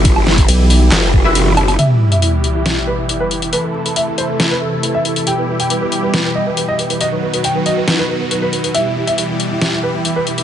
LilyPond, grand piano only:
\new Staff \with { instrumentName = "Grand piano" } { \time 4/4 \key e \minor \tempo 4 = 138 r1 | e''16 e'16 e'16 e''16 e'16 e'16 r16 e'16 r16 e'16 b'16 e'16 e'16 b'16 e'16 e'16 | b'16 a'16 a'16 a'16 e''16 a'16 c''16 a'16 r16 b'16 a'16 a'16 a'16 e''16 a'16 a'16 | g''16 b'16 b'16 g''16 b'16 b'16 r16 b'16 r16 b'16 dis''16 b'16 b'16 dis''16 b'16 b'16 |
dis''16 b'16 b'16 b'16 g''16 b'16 dis''16 b'16 b'16 b'16 b'16 b'16 b'16 b'16 b'16 b'16 | e''16 e'16 e'16 e''16 e'16 e'16 r16 e'16 e'16 e'16 b'16 e'16 e'16 b'16 e'16 e'16 | }